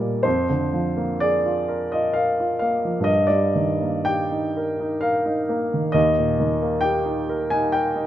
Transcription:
0.00 0.20 D#2 soft
0.00 0.24 A#2 soft
0.00 0.15 G3 soft
0.00 0.28 A#3 soft
0.00 0.28 G4 soft
0.00 0.24 D5 soft
0.00 0.27 D#5 medium
0.23 3.04 F2 soft
0.23 1.21 C5 medium
0.50 0.88 D3 soft
0.73 1.12 F3 soft
0.97 1.36 A#3 soft
1.20 1.61 G#4 soft
1.20 1.93 D5 medium
1.46 1.84 F4 soft
1.68 2.07 A#4 soft
1.92 2.31 F4 soft
1.92 2.16 D#5 soft
2.13 2.53 A#4 soft
2.13 2.58 F5 medium
2.40 2.76 F4 soft
2.59 2.98 A#3 soft
2.59 3.06 F5 medium
2.85 3.08 F3 soft
3.00 5.87 G2 soft
3.00 3.30 D#5 medium
3.27 3.72 G3 soft
3.27 4.07 D5 medium
3.55 3.98 D#3 soft
3.82 4.23 A#3 soft
4.05 4.47 G4 soft
4.05 5.02 G5 medium
4.32 4.71 D#4 soft
4.57 4.95 A#4 soft
4.80 5.18 D#4 soft
5.01 5.40 A#4 soft
5.01 5.93 F5 medium
5.26 5.63 D#4 soft
5.49 5.86 A#3 soft
5.74 5.96 D#3 soft
5.92 8.07 D#2 soft
5.92 6.83 D#5 medium
6.18 6.53 A#2 soft
6.40 6.76 D#3 soft
6.62 6.98 A#3 soft
6.81 7.20 G4 soft
6.81 7.50 G5 medium
7.06 7.42 D#4 soft
7.29 7.66 A#4 soft
7.50 7.88 D#4 soft
7.50 7.74 G#5 medium
7.72 8.07 A#4 soft
7.72 8.07 G5 medium
7.96 8.07 D#4 soft

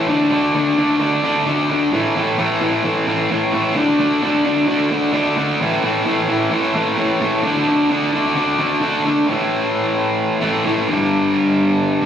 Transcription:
0.08 0.29 D3 medium
0.08 0.30 A3 medium
0.08 0.30 D4 medium
0.30 0.54 D3 medium
0.30 0.55 A3 medium
0.30 0.55 D4 medium
0.55 0.76 D3 medium
0.55 0.78 A3 medium
0.55 0.78 D4 medium
0.77 0.99 D3 medium
0.77 1.01 A3 medium
0.77 1.01 D4 medium
1.00 1.22 D3 medium
1.00 1.23 A3 medium
1.00 1.23 D4 medium
1.23 1.44 D3 medium
1.23 1.46 A3 medium
1.23 1.46 D4 medium
1.46 1.68 D3 medium
1.46 1.70 A3 medium
1.46 1.70 D4 loud
1.69 1.91 D3 medium
1.69 1.93 A3 medium
1.69 1.92 D4 medium
1.92 2.14 A2 medium
1.92 2.15 E3 medium
1.92 2.16 A3 medium
2.16 2.37 A2 medium
2.16 2.37 E3 medium
2.16 2.39 A3 medium
2.38 2.60 A2 medium
2.38 2.61 E3 medium
2.38 2.62 A3 medium
2.61 2.82 A2 medium
2.61 2.83 E3 medium
2.61 2.85 A3 medium
2.83 3.06 A2 medium
2.83 3.06 E3 medium
2.83 3.07 A3 loud
3.07 3.29 A2 medium
3.07 3.29 E3 medium
3.07 3.31 A3 medium
3.30 3.51 A2 medium
3.30 3.52 E3 loud
3.30 3.54 A3 loud
3.52 3.75 A2 medium
3.52 3.75 E3 medium
3.52 3.76 A3 medium
3.75 3.97 D3 medium
3.75 3.99 A3 medium
3.75 3.99 D4 loud
3.98 4.21 D3 medium
3.98 4.22 A3 medium
3.98 4.21 D4 medium
4.22 4.44 D3 medium
4.22 4.45 A3 medium
4.22 4.45 D4 loud
4.45 4.65 D3 medium
4.45 4.67 A3 medium
4.45 4.67 D4 medium
4.66 4.89 D3 medium
4.66 4.91 A3 loud
4.66 4.91 D4 loud
4.91 5.12 D3 medium
4.91 5.13 A3 medium
4.91 5.13 D4 medium
5.13 5.35 D3 medium
5.13 5.36 A3 loud
5.13 5.37 D4 loud
5.36 5.59 D3 medium
5.36 5.61 A3 medium
5.36 5.59 D4 medium
5.61 5.82 A2 medium
5.61 5.83 E3 medium
5.61 5.84 A3 loud
5.83 6.05 A2 medium
5.83 6.06 E3 medium
5.83 6.07 A3 medium
6.06 6.27 A2 loud
6.06 6.28 E3 medium
6.06 6.29 A3 loud
6.29 6.50 A2 medium
6.29 6.51 E3 medium
6.29 6.52 A3 medium
6.51 6.73 A2 medium
6.51 6.74 E3 medium
6.51 6.75 A3 medium
6.74 6.95 A2 medium
6.74 6.96 E3 medium
6.74 6.97 A3 loud
6.97 7.19 A2 loud
6.97 7.20 E3 loud
6.97 7.21 A3 loud
7.20 7.42 A2 medium
7.20 7.43 E3 medium
7.20 7.44 A3 medium
7.43 7.66 D3 medium
7.43 7.67 A3 medium
7.43 7.67 D4 loud
7.67 7.88 D3 medium
7.67 7.89 A3 medium
7.67 7.90 D4 medium
7.89 8.11 D3 medium
7.89 8.13 A3 medium
7.89 8.13 D4 loud
8.13 8.34 D3 medium
8.13 8.35 A3 medium
8.13 8.36 D4 medium
8.35 8.57 D3 medium
8.35 8.58 A3 medium
8.35 8.59 D4 loud
8.58 8.79 D3 medium
8.58 8.80 A3 medium
8.58 8.81 D4 medium
8.81 9.03 D3 medium
8.81 9.04 A3 loud
8.81 9.04 D4 loud
9.04 9.26 D3 medium
9.04 9.27 A3 medium
9.04 9.27 D4 medium
9.27 10.40 A2 medium
9.27 10.41 E3 medium
9.27 10.40 A3 medium
10.41 10.63 A2 medium
10.41 10.64 E3 medium
10.41 10.63 A3 medium
10.64 10.86 A2 medium
10.64 10.87 E3 medium
10.64 10.88 A3 medium
10.88 12.00 G2 medium
10.88 12.02 D3 loud
10.92 12.03 G3 loud
12.01 12.06 G2 medium

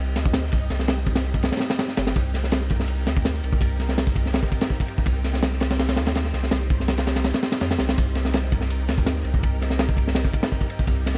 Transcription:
0.00 0.17 C2 loud
0.00 11.18 C4 medium
0.00 11.18 D#4 medium
0.00 11.18 G4 medium
0.00 2.15 D#5 medium
0.16 0.51 D2 medium
0.16 snare medium
0.16 ride medium
0.26 kick loud
0.33 snare loud
0.33 ride medium
0.44 snare soft
0.52 0.69 C2 medium
0.52 kick medium
0.52 ride medium
0.70 1.51 C2 medium
0.70 snare soft
0.70 ride medium
0.79 snare soft
0.88 snare loud
0.88 ride medium
0.98 snare soft
1.06 kick medium
1.06 ride medium
1.15 snare loud
1.15 ride medium
1.24 snare soft
1.34 kick medium
1.34 ride medium
1.43 snare loud
1.43 ride medium
1.52 snare medium
1.52 ride medium
1.57 snare medium
1.57 ride medium
1.60 snare loud
1.60 ride medium
1.70 snare loud
1.70 ride medium
1.79 snare loud
1.79 ride medium
1.88 snare medium
1.97 2.14 G1 loud
1.97 snare loud
1.97 ride medium
2.07 snare loud
2.07 ride medium
2.16 3.08 C2 loud
2.16 5.06 A#4 medium
2.16 kick loud
2.16 ride medium
2.34 snare soft
2.34 ride medium
2.44 snare soft
2.52 snare loud
2.52 ride medium
2.61 snare soft
2.70 kick loud
2.70 ride medium
2.80 snare medium
2.88 ride medium
3.07 3.42 D2 medium
3.07 snare medium
3.07 ride medium
3.17 kick loud
3.25 snare loud
3.25 ride medium
3.34 snare soft
3.44 3.60 C2 medium
3.44 ride medium
3.53 kick medium
3.61 4.42 C2 loud
3.61 kick loud
3.61 ride medium
3.79 snare soft
3.79 ride medium
3.89 snare soft
3.98 snare loud
3.98 ride medium
4.07 kick loud
4.16 kick medium
4.16 ride medium
4.26 snare medium
4.34 snare loud
4.34 ride medium
4.43 kick medium
4.52 kick medium
4.52 ride medium
4.61 snare loud
4.61 ride medium
4.70 kick medium
4.80 kick medium
4.80 ride medium
4.88 ride medium
4.98 kick loud
5.06 5.99 C2 loud
5.06 7.96 C5 medium
5.06 kick loud
5.06 ride medium
5.24 snare soft
5.24 ride medium
5.34 snare soft
5.43 snare loud
5.43 ride medium
5.53 snare soft
5.60 snare loud
5.60 ride medium
5.70 snare loud
5.70 ride medium
5.79 snare loud
5.79 ride medium
5.88 snare loud
5.88 ride medium
5.96 6.33 D2 medium
5.96 snare loud
5.96 ride medium
6.06 snare loud
6.06 ride medium
6.15 snare loud
6.15 ride medium
6.25 snare soft
6.33 6.50 C2 medium
6.33 snare soft
6.33 ride medium
6.43 snare soft
6.51 7.33 C2 loud
6.51 snare loud
6.51 ride medium
6.61 snare soft
6.70 kick medium
6.70 ride medium
6.80 snare soft
6.88 snare loud
6.88 ride medium
6.98 snare loud
6.98 ride medium
7.07 snare loud
7.07 ride medium
7.16 snare loud
7.16 ride medium
7.24 snare loud
7.24 ride medium
7.34 snare loud
7.34 ride medium
7.43 snare loud
7.43 ride medium
7.52 snare loud
7.52 ride medium
7.61 7.78 F2 medium
7.61 snare loud
7.61 ride medium
7.71 snare loud
7.71 ride medium
7.79 7.96 C2 medium
7.79 snare loud
7.79 ride medium
7.89 snare loud
7.89 ride medium
7.97 8.90 C2 loud
7.97 10.87 A#4 medium
7.97 kick loud
7.97 ride medium
8.15 snare soft
8.15 ride medium
8.25 snare soft
8.33 snare loud
8.33 ride medium
8.43 snare soft
8.52 kick medium
8.52 ride medium
8.61 snare medium
8.70 ride medium
8.88 9.24 D2 medium
8.88 snare medium
8.88 ride medium
8.98 kick medium
9.06 snare loud
9.06 ride medium
9.16 snare soft
9.24 9.41 C2 medium
9.24 ride medium
9.34 kick medium
9.43 10.24 C2 loud
9.43 kick loud
9.43 ride medium
9.61 snare soft
9.61 ride medium
9.70 snare soft
9.79 snare loud
9.79 ride medium
9.89 kick medium
9.97 kick loud
9.97 ride medium
10.07 snare medium
10.15 snare loud
10.15 ride medium
10.25 kick medium
10.34 kick medium
10.34 ride medium
10.43 snare loud
10.43 ride medium
10.52 kick medium
10.61 kick loud
10.61 ride medium
10.70 ride medium
10.79 kick medium
10.87 11.18 C2 loud
10.87 11.18 D5 medium
10.87 kick loud
10.87 ride medium
11.06 snare soft
11.06 ride medium
11.15 snare soft

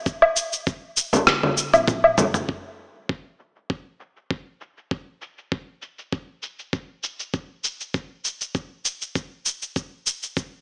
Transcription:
0.06 kick loud
0.06 shaker soft
0.22 low woodblock medium
0.36 shaker medium
0.53 shaker soft
0.67 kick loud
0.67 shaker soft
0.97 shaker medium
1.13 frame drum medium
1.13 shaker soft
1.27 kick loud
1.27 cross-stick medium
1.27 high tom medium
1.27 shaker soft
1.43 high tom medium
1.43 frame drum medium
1.57 shaker medium
1.74 mid tom medium
1.74 low woodblock medium
1.74 shaker soft
1.88 kick loud
1.88 mid tom medium
1.88 shaker soft
2.04 low woodblock medium
2.18 mid tom loud
2.18 frame drum medium
2.18 shaker medium
2.34 mid tom medium
2.34 shaker soft
2.49 kick medium
2.49 shaker soft
2.79 shaker medium
2.95 shaker soft
3.09 kick medium
3.09 shaker soft
3.40 shaker medium
3.56 shaker soft
3.70 kick medium
3.70 shaker soft
4.00 shaker medium
4.17 shaker soft
4.31 kick medium
4.61 shaker medium
4.77 shaker soft
4.91 kick medium
4.91 shaker soft
5.22 shaker medium
5.38 shaker soft
5.52 kick medium
5.52 shaker soft
5.82 shaker medium
5.99 shaker soft
6.12 kick loud
6.12 shaker soft
6.43 shaker medium
6.59 shaker soft
6.73 kick medium
6.73 shaker soft
7.03 shaker medium
7.20 shaker soft
7.34 kick loud
7.34 shaker soft
7.64 shaker medium
7.81 shaker soft
7.94 kick loud
7.94 shaker soft
8.25 shaker medium
8.41 shaker soft
8.55 kick loud
8.55 shaker soft
8.85 shaker medium
9.02 shaker soft
9.15 kick loud
9.15 shaker soft
9.46 shaker medium
9.62 shaker soft
9.76 kick medium
9.76 shaker soft
10.07 shaker medium
10.23 shaker soft
10.37 kick medium
10.37 shaker soft

